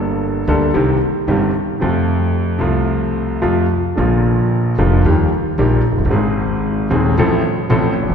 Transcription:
Already playing: G1 G2 G3 A#3 D4 A4
0.47 D2 D3 G3 A#3 D4 A4
0.74 C2 C3 D#3 G3 C4 G4
1.27 G1 G2 D#3 G3 C4 G4
1.80 F2 C3 F3 A3
1.84 F4
2.59 C2 C3 F3 A3
2.63 F4
3.42 F2 C3 F3 A3 F4
3.95 A#1 A#2 D3 F3 A#3 F4
4.78 F1 F2 D3 F3 A#3 F4
5.05 D#2 D#3 G3 A#3 G4
5.58 A#1 A#2 D#3 G3 A#3 G4
5.91 F1
5.97 F#1
6.05 G1 D#3
6.10 G#1 G#2 G#3 C4 G#4
6.90 D#1 D#2 D#3 G#3 C4 G#4
7.17 A1 A2 F3 A3 C4 A4
7.69 A1 A2 F3 A3 C4 A4
8.02 E1 E2
8.09 F1 F2

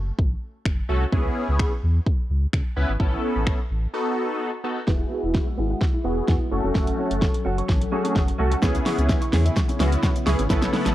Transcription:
Already playing: F#1
0.19 A1, kick
0.66 F#1, finger snap, kick
0.89 C2 A3 C#4 F#4 A4
1.12 C#2 B3 C#4 E4 G#4, kick
1.49 C#2
1.59 finger snap, kick
1.83 E2
2.06 kick
2.30 C#2
2.53 C#3, finger snap, kick
2.76 C#2 B3 C#4 E4 B4
2.89 G#1
3.00 A1 B3 C#4 E4 A4, kick
3.36 A1
3.47 finger snap, kick
3.70 A1
3.94 B3 D#4 F#4 A4
4.64 B3 D#4 F#4 A4
4.87 E1 G#3 B3 E4 F#4 G#4, kick, snare
5.00 muted clean electric guitar stroke
5.10 B3 F#4 G#4 E6
5.23 E1 B3 E4 F#4 G#4
5.34 F#5, muted clean electric guitar stroke, kick, snare
5.46 E6, muted clean electric guitar stroke
5.57 G#1 B3 E4 F#4 G#4
5.70 B3 F#4 G#4 F#5
5.81 E6, kick, snare
5.93 E4, muted clean electric guitar stroke
6.04 E1 B3 E4 F#4 G#4 F#5
6.17 muted clean electric guitar stroke
6.28 E2 B3 E4 F#4 G#4, kick, snare
6.40 muted clean electric guitar stroke
6.51 F#1 F#3 A3 C#4 F#4 A4 C#6, muted clean electric guitar stroke
6.64 F1 C#4 F#4 A4
6.74 F#1 C#4 F#4 A4, kick, snare
6.87 muted clean electric guitar stroke, closed hi-hat
6.98 C#4 F#4 A4
7.10 F#1 C#4 F#4 A4, closed hi-hat
7.22 C#6, muted clean electric guitar stroke, kick, snare
7.34 muted clean electric guitar stroke, closed hi-hat
7.45 F#1 C#4 F#4 A4 F#5
7.57 C#4 F#4 A4 C#6, closed hi-hat
7.69 A1 C#4, kick, snare
7.81 muted clean electric guitar stroke, closed hi-hat
7.92 A3 C#4 F#4 G#4 A4 C#6
8.04 C#4, muted clean electric guitar stroke, closed hi-hat
8.16 F#1 F#5, kick, snare
8.28 muted clean electric guitar stroke, closed hi-hat
8.38 C2 A3 C#4 F#4 A4
8.51 F#5, muted clean electric guitar stroke, closed hi-hat
8.62 C#2 C#3 B3 C#4 E4 G#4, kick, snare, shaker
8.75 muted clean electric guitar stroke, closed hi-hat, shaker
8.85 B3 E4 G#4 C#6, snare, open hi-hat
8.98 C#2 B3 C#4 E4 G#4, closed hi-hat, shaker
9.09 E5, kick, snare, shaker
9.21 C#6, muted clean electric guitar stroke, closed hi-hat, shaker
9.32 E2 B3 C#4 E4 G#4, snare, open hi-hat
9.45 B3 E4 G#4 E5, closed hi-hat, shaker
9.56 C#6, kick, snare, shaker
9.68 C#4, muted clean electric guitar stroke, closed hi-hat, shaker
9.79 C#2 B3 C#4 E4 F#4 G#4 E5, snare, open hi-hat, shaker
9.92 muted clean electric guitar stroke, closed hi-hat, shaker
10.03 C#3 C#4, kick, snare, shaker
10.15 muted clean electric guitar stroke, closed hi-hat, shaker
10.26 C#2 B3 C#4 E4 G#4 C#6, snare, open hi-hat, shaker
10.38 G#1 C#4, muted clean electric guitar stroke, closed hi-hat, shaker
10.49 A1 A3 B3 C#4 E4 A4 B4, kick, snare, shaker
10.62 muted clean electric guitar stroke, snare, closed hi-hat, shaker
10.73 C#4 E4 B4, snare, open hi-hat, shaker
10.85 A1 C#4 E4 B4, snare, closed hi-hat, shaker

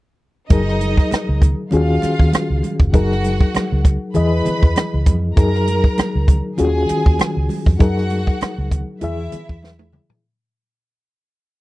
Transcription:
0.50 F#1 F#3 D#4 G#4 A#4 D#5, kick, closed hi-hat, muted conga
0.68 cross-stick
0.81 closed hi-hat, muted conga
0.97 kick, cross-stick
1.11 muted fingered electric bass stroke, cross-stick, closed hi-hat, high conga
1.29 C#2
1.42 kick, closed hi-hat, low conga
1.71 D#2 D#3 C#4 F4 F#4 G#4 F5, closed hi-hat, muted conga
2.02 muted fingered electric bass stroke, closed hi-hat, muted conga
2.19 D#2, kick
2.33 muted fingered electric bass stroke, cross-stick, closed hi-hat, high conga
2.50 C#2
2.63 closed hi-hat, high conga
2.80 F1, kick
2.93 F#1 F#3 D#4 F#4 G#4 A#4 F#5, kick, closed hi-hat, muted conga
3.12 cross-stick
3.24 closed hi-hat, muted conga
3.40 kick
3.55 muted fingered electric bass stroke, cross-stick, closed hi-hat, high conga
3.72 C#2
3.85 kick, closed hi-hat
4.14 E2 E3 E4 G#4 B4 D#5 B5, closed hi-hat, muted conga, low conga
4.45 muted fingered electric bass stroke, closed hi-hat, muted conga, low conga
4.63 E2, kick
4.76 cross-stick, closed hi-hat, high conga
4.94 C#2
5.06 F2, kick, closed hi-hat, high conga
5.36 F#2 F#3 D#4 G#4 A#4 A#5, kick, closed hi-hat
5.55 cross-stick
5.68 closed hi-hat, muted conga
5.84 kick
5.98 muted fingered electric bass stroke, cross-stick, closed hi-hat, high conga
6.15 C#2
6.28 kick, closed hi-hat, low conga
6.57 D#2 D#3 C#4 F4 F#4 G#4 G#5, closed hi-hat, muted conga
6.89 muted fingered electric bass stroke, closed hi-hat, muted conga
7.06 D#2, kick
7.19 muted fingered electric bass stroke, cross-stick, closed hi-hat, high conga
7.37 C#2
7.49 open hi-hat, high conga
7.66 F2, kick
7.79 F#2 F#3 D#4 F#4 G#4 A#4 F#5, kick, closed hi-hat
7.97 cross-stick
8.10 closed hi-hat, muted conga
8.27 kick
8.41 muted fingered electric bass stroke, cross-stick, closed hi-hat, high conga
8.58 C#2
8.71 kick, closed hi-hat, low conga
9.01 E2 E3 E4 G#4 E5, closed hi-hat, muted conga, low conga
9.32 muted fingered electric bass stroke, closed hi-hat, muted conga, low conga
9.49 E2, kick
9.63 snare, high conga
9.79 high tom
9.92 mid tom, high conga
10.10 floor tom

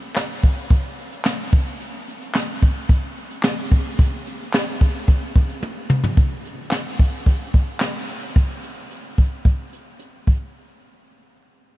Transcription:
0.02 closed hi-hat
0.16 snare, clap
0.30 closed hi-hat
0.43 kick, closed hi-hat
0.57 closed hi-hat
0.70 kick, closed hi-hat
0.98 closed hi-hat
1.12 closed hi-hat
1.25 snare, clap
1.53 kick, closed hi-hat
1.67 closed hi-hat
1.80 closed hi-hat
1.94 closed hi-hat
2.08 closed hi-hat
2.21 closed hi-hat
2.34 snare, clap
2.49 closed hi-hat
2.62 kick, closed hi-hat
2.76 closed hi-hat
2.89 kick, closed hi-hat
3.17 closed hi-hat
3.31 closed hi-hat
3.43 snare, clap
3.58 closed hi-hat
3.72 kick, closed hi-hat
3.86 closed hi-hat
3.99 kick, closed hi-hat
4.13 closed hi-hat
4.27 closed hi-hat
4.40 closed hi-hat
4.53 snare, clap
4.81 kick, closed hi-hat
4.95 closed hi-hat
5.08 kick, closed hi-hat
5.36 kick, closed hi-hat
5.49 closed hi-hat
5.63 high tom
5.90 mid tom
6.04 floor tom
6.17 kick, closed hi-hat
6.45 closed hi-hat
6.71 snare, clap, closed hi-hat
6.99 kick, closed hi-hat
7.26 kick, closed hi-hat
7.54 kick, closed hi-hat
7.80 snare, clap, closed hi-hat
8.09 closed hi-hat
8.36 kick, closed hi-hat
8.63 closed hi-hat
8.91 closed hi-hat
9.18 kick, closed hi-hat
9.45 kick, closed hi-hat
9.73 closed hi-hat
9.99 closed hi-hat
10.27 kick, closed hi-hat

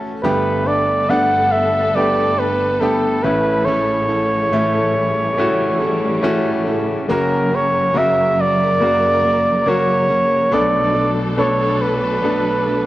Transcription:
Already playing: A1 A2 A3 C#4 F#4 A4 E5 F#5 A5
0.23 G1 G2 D3 G3 A3 B3 D4 G4 A4 B4
0.66 B3 D4 A4 D5
1.09 G3 A3 B3 D4 A4 F#5
1.52 E5
1.95 G3 A3 B3 D4 G4 A4 D5
2.38 B3 D4 A4 B4
2.80 G3 A3 B3 D4 G4 A4
3.23 A1 A2 C#3 E3 A3 C#4 E4 A4 B4
3.65 A2 E3 A3 C#4 E4 A4 C#5
4.08 A3 C#4 E4 A4
4.52 A2 E3 A3 C#4 E4 A4
4.95 G3
5.37 A3 C#4 E4 F#4 A4
5.80 A3 C#4 E4 A4
6.23 A2 E3 A3 C#4 E4 F#4 A4
6.66 A3 C#4 E4 A4
7.09 F#1 F#2 C#3 F#3 A#3 C#4 F#4 A#4
7.51 F#3 A#3 C#4 A#4
7.56 C#5
7.93 F#2 C#3 F#3 A#3 F#4 A#4
7.98 E5
8.41 D5
8.80 C#3 F#3 A#3 F#4 A#4
9.23 F#3 A#3 A#4
9.66 F#2 C#3 F#3 A#3 C#4 F#4 A#4 C#5
10.09 F#3 A#3 C#4 A#4
10.51 B1 B2 F#3 A3 B3 D4 A4 D5
10.94 A3 D4 A4
11.37 B2 F#3 A3 B3 D4 A4 C#5
11.82 B4
12.22 F#3 A3 B3 D4 A4
12.66 A3 D4 A4

